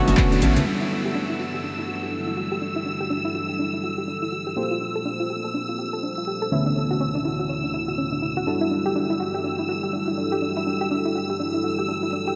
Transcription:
0.00 0.40 D3 loud
0.00 0.40 A3 medium
0.00 0.40 B3 medium
0.00 0.40 C#4 medium
0.00 0.40 F#4 loud
0.00 0.65 E6 medium
0.07 0.14 F#1 medium
0.07 0.12 F#4 medium
0.07 snare loud
0.07 closed hi-hat medium
0.07 ride medium
0.07 cabasa soft
0.17 0.21 B4 medium
0.17 kick loud
0.17 clap loud
0.17 cabasa soft
0.32 0.38 D4 medium
0.32 closed hi-hat soft
0.32 ride medium
0.32 cabasa soft
0.41 0.59 A1 medium
0.41 0.64 D3 medium
0.41 0.64 A3 medium
0.41 0.64 B3 medium
0.41 0.48 C#4 medium
0.41 0.64 C#4 medium
0.41 0.64 E4 loud
0.41 open hi-hat loud
0.41 ride medium
0.41 high conga medium
0.41 cabasa medium
0.56 0.63 C#4 medium
0.56 snare soft
0.56 closed hi-hat medium
0.56 low conga loud
0.56 cabasa soft
0.66 4.54 G3 medium
0.66 4.54 D4 medium
0.66 0.73 D4 medium
0.66 4.54 E4 medium
0.66 4.54 F#4 medium
0.66 4.54 A4 medium
0.66 8.46 E6 medium
0.66 crash medium
0.81 0.85 E4 loud
0.91 0.97 D4 medium
1.05 1.08 G4 loud
1.15 1.21 D4 medium
1.30 1.36 E4 medium
1.39 1.43 F#4 medium
1.54 1.58 G4 medium
1.64 1.70 D4 medium
1.78 1.83 E4 medium
1.88 1.94 F#4 medium
2.03 2.07 G4 medium
2.13 2.22 D4 medium
2.27 2.31 E4 medium
2.37 2.41 F#4 medium
2.52 2.54 G4 medium
2.61 2.68 D4 medium
2.76 2.80 E4 loud
2.86 2.92 D4 medium
3.00 3.03 G4 loud
3.10 3.16 D4 loud
3.25 3.31 E4 medium
3.35 3.38 F#4 medium
3.49 3.53 G4 medium
3.59 3.65 D4 medium
3.74 3.78 E4 medium
3.83 3.90 F#4 medium
3.98 4.02 G4 medium
4.08 4.17 D4 medium
4.22 4.27 E4 medium
4.32 4.36 F#4 medium
4.47 4.49 G4 medium
4.56 6.49 A#3 medium
4.56 4.63 D4 medium
4.56 6.49 F4 medium
4.56 6.49 G4 medium
4.56 6.49 A4 medium
4.56 6.50 C5 medium
4.71 4.75 F4 loud
4.81 4.87 D4 medium
4.95 4.98 A4 loud
5.05 5.12 D4 loud
5.20 5.26 F4 medium
5.30 5.34 G4 medium
5.44 5.49 A4 medium
5.54 5.60 D4 medium
5.69 5.73 F4 medium
5.79 5.85 G4 medium
5.93 5.97 A4 medium
6.03 6.12 D4 medium
6.18 6.22 F4 medium
6.27 6.31 G4 medium
6.42 6.44 A4 loud
6.51 8.44 D3 medium
6.51 8.44 A3 medium
6.51 8.45 B3 medium
6.51 6.58 C#4 medium
6.51 8.45 C#4 medium
6.51 8.45 E4 medium
6.66 6.70 D4 medium
6.76 6.82 C#4 medium
6.91 6.93 F#4 loud
7.00 7.07 C#4 loud
7.15 7.21 D4 medium
7.25 7.29 E4 medium
7.39 7.44 F#4 medium
7.49 7.55 C#4 medium
7.64 7.68 D4 medium
7.74 7.80 E4 medium
7.88 7.92 F#4 medium
7.98 8.07 C#4 medium
8.12 8.17 D4 medium
8.22 8.26 E4 medium
8.37 8.39 F#4 loud
8.46 12.34 G3 medium
8.46 12.35 D4 medium
8.46 8.53 D4 medium
8.46 12.35 E4 medium
8.46 12.35 F#4 medium
8.46 12.35 A4 medium
8.46 12.36 E6 medium
8.61 8.65 E4 loud
8.71 8.77 D4 medium
8.86 8.88 G4 loud
8.95 9.02 D4 loud
9.10 9.16 E4 medium
9.20 9.24 F#4 medium
9.34 9.39 G4 medium
9.44 9.50 D4 medium
9.59 9.63 E4 medium
9.69 9.75 F#4 medium
9.83 9.87 G4 medium
9.93 10.02 D4 medium
10.08 10.12 E4 medium
10.17 10.21 D4 medium
10.32 10.35 G4 loud
10.42 10.48 D4 medium
10.57 10.61 E4 loud
10.66 10.73 D4 medium
10.81 10.83 G4 loud
10.91 10.97 D4 loud
11.05 11.12 E4 medium
11.15 11.19 F#4 medium
11.30 11.34 G4 medium
11.40 11.46 D4 medium
11.54 11.58 E4 medium
11.64 11.70 F#4 medium
11.78 11.83 G4 medium
11.88 11.98 D4 medium
12.03 12.07 E4 medium
12.13 12.16 D4 medium
12.27 12.30 G4 loud

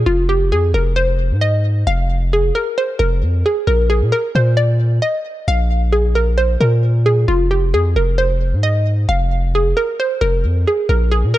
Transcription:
0.06 0.53 F1 loud
0.06 0.24 F4 medium
0.29 0.46 G4 medium
0.52 0.73 F2 loud
0.52 0.69 G#4 medium
0.74 1.33 F1 loud
0.74 0.92 A#4 medium
0.96 1.39 C5 medium
1.31 1.84 G#2 loud
1.41 1.84 D#5 medium
1.87 2.52 F1 loud
1.87 2.29 F5 loud
2.33 2.50 G#4 medium
2.55 2.72 A#4 medium
2.78 2.95 C5 medium
2.99 3.24 F1 loud
2.99 3.42 A#4 loud
3.22 3.44 F2 loud
3.46 3.63 G#4 medium
3.67 4.03 A#1 loud
3.67 3.85 A#4 medium
3.90 4.07 G#4 medium
4.02 4.12 A#2 loud
4.12 4.30 A#4 medium
4.35 5.00 A#2 loud
4.35 4.53 C5 medium
4.57 5.00 D5 medium
5.02 5.45 D#5 medium
5.48 6.57 A#1 loud
5.48 5.90 F5 loud
5.92 6.10 G#4 medium
6.15 6.33 A#4 medium
6.38 6.55 C5 medium
6.61 7.26 A#2 loud
6.61 7.03 A#4 medium
7.06 7.23 G#4 medium
7.28 7.75 F1 loud
7.28 7.46 F4 medium
7.51 7.68 G4 medium
7.73 7.95 F2 loud
7.73 7.91 G#4 medium
7.96 8.55 F1 loud
7.96 8.13 A#4 medium
8.18 8.61 C5 medium
8.53 9.06 G#2 loud
8.63 9.06 D#5 medium
9.09 9.74 F1 loud
9.09 9.51 F5 medium
9.55 9.72 G#4 medium
9.77 9.94 A#4 medium
10.00 10.17 C5 medium
10.21 10.46 F1 loud
10.21 10.64 A#4 loud
10.44 10.66 F2 loud
10.68 10.84 G#4 medium
10.89 11.25 A#1 loud
10.89 11.06 A#4 medium
11.12 11.29 G#4 medium
11.24 11.34 A#2 loud
11.34 11.38 A#4 medium

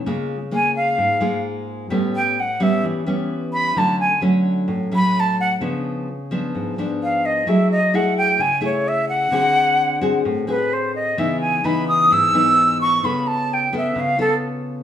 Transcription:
0.06 0.96 C#3 medium
0.06 0.35 G#3 medium
0.06 0.36 A#3 medium
0.06 0.36 F4 medium
0.51 1.17 G#3 medium
0.51 1.18 A#3 medium
0.51 1.18 F4 medium
0.51 0.75 G#5 medium
0.76 1.41 F5 medium
0.98 1.88 G#2 medium
1.21 1.87 G#3 medium
1.21 1.87 A#3 medium
1.21 1.87 F4 medium
1.90 2.81 A2 medium
1.90 2.36 G3 medium
1.90 2.37 B3 medium
1.90 2.37 C#4 medium
2.16 2.41 G5 medium
2.40 2.64 F#5 medium
2.60 3.03 G3 medium
2.60 3.03 B3 medium
2.60 3.03 C#4 medium
2.60 2.85 E5 medium
2.83 3.74 E3 medium
3.06 3.72 G3 medium
3.06 3.72 B3 medium
3.06 3.73 C#4 medium
3.53 3.80 B5 loud
3.76 4.67 D3 medium
3.76 4.06 F#3 medium
3.76 4.06 A3 medium
3.76 4.06 C#4 medium
3.76 3.99 A5 medium
4.00 4.21 G#5 medium
4.21 4.88 F#3 medium
4.21 4.88 A3 medium
4.21 4.88 C#4 medium
4.68 5.59 A2 medium
4.91 5.57 F#3 medium
4.91 5.58 A3 medium
4.91 5.58 C#4 medium
4.96 5.21 B5 loud
5.20 5.40 A5 medium
5.40 5.54 F#5 loud
5.61 6.51 C#3 medium
5.61 6.07 F3 medium
5.61 6.08 B3 medium
5.61 6.08 D4 medium
6.31 6.74 F3 medium
6.31 6.74 B3 medium
6.31 6.74 D4 medium
6.55 7.45 G#2 medium
6.78 7.44 F3 medium
6.78 7.44 B3 medium
6.78 7.44 D4 medium
7.03 7.27 F5 medium
7.26 7.50 D#5 medium
7.47 8.37 F#3 medium
7.47 7.77 A3 medium
7.47 7.77 E4 medium
7.47 7.77 G#4 medium
7.47 7.71 E5 medium
7.72 7.97 D#5 medium
7.94 8.39 A3 medium
7.94 8.40 E4 medium
7.94 8.40 G#4 medium
7.94 8.17 F#5 medium
8.17 8.42 G5 medium
8.39 9.30 C#3 medium
8.39 8.63 G#5 loud
8.61 9.27 A3 medium
8.61 9.28 E4 medium
8.61 9.28 G#4 medium
8.65 8.90 C#5 medium
8.88 9.08 E5 medium
9.09 10.21 F#5 loud
9.31 10.22 D3 medium
9.31 9.98 C4 medium
9.31 9.98 F#4 medium
9.31 9.98 G#4 medium
10.01 10.44 C4 medium
10.01 10.44 F#4 medium
10.01 10.45 G#4 medium
10.25 11.15 A2 medium
10.47 11.13 C4 medium
10.47 11.14 F#4 medium
10.47 11.14 G#4 medium
10.47 10.75 B4 medium
10.73 10.95 C5 medium
10.95 11.21 D#5 medium
11.17 12.08 C#3 medium
11.17 11.60 E3 medium
11.17 11.60 B3 medium
11.17 11.60 D#4 medium
11.17 11.40 E5 medium
11.41 11.67 G#5 loud
11.64 12.30 E3 medium
11.64 12.30 B3 medium
11.64 12.30 D#4 medium
11.64 11.87 B5 medium
11.88 12.14 D#6 loud
12.11 13.01 G#2 medium
12.11 12.81 E6 loud
12.34 12.99 E3 medium
12.34 12.99 B3 medium
12.34 13.00 D#4 medium
12.81 13.07 C#6 loud
13.03 13.93 C#3 medium
13.03 13.69 B3 medium
13.03 13.69 F4 medium
13.03 13.70 A4 medium
13.03 13.29 B5 medium
13.27 13.55 A5 loud
13.54 13.74 G5 medium
13.73 14.15 B3 medium
13.73 14.15 F4 medium
13.73 14.15 A4 medium
13.77 14.02 E5 medium
13.96 14.83 C#3 medium
14.00 14.20 F5 medium
14.18 14.83 B3 medium
14.18 14.83 F4 medium
14.18 14.83 A4 medium
14.18 14.34 A4 medium

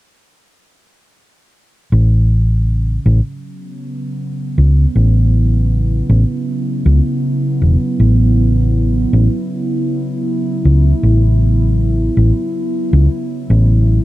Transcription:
1.92 2.97 A1 medium
1.92 14.04 C#3 medium
3.06 3.19 A1 medium
3.06 14.04 F#3 medium
3.44 14.04 B3 medium
4.58 4.85 C#2 medium
4.65 14.04 E4 medium
4.96 6.01 A1 medium
6.09 6.23 A1 medium
6.86 6.99 C#2 medium
7.62 7.75 E1 medium
8.00 9.05 A1 medium
9.13 9.27 A1 medium
10.65 10.92 C#2 medium
11.03 12.08 A1 medium
12.17 12.30 A1 medium
12.93 13.06 C#2 medium
13.50 13.98 A1 medium

